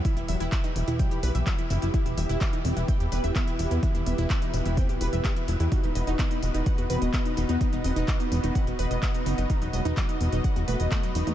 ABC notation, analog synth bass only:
X:1
M:4/4
L:1/16
Q:1/4=127
K:Em
V:1 name="Analog synth bass" clef=bass
z E,,, E,,, E,,, z2 E,,, E,,,2 B,,, B,,, B,,, z2 F,,, F,,, | z E,,, E,,, E,,, z2 E,,, E,,, z E,, E,,, E,,, z2 E,,, E,, | z E,,, E,,, E,,, z2 E,,, E,,,2 B,,, E,,, E,,, z2 E,,, E,, | z E,,, E,,, E,,, z2 E,,, E,,, z E,, E,,, E,,, z2 E,,, E,, |
z E,,, E,,, E,,, z2 E,,, E,,, z E,,, E,,, E,,, z2 F,,, F,,, | z E,,, E,,, E,,, z2 E,,, E,,, z E,, E,,, E,,, z2 E,,, E,, |]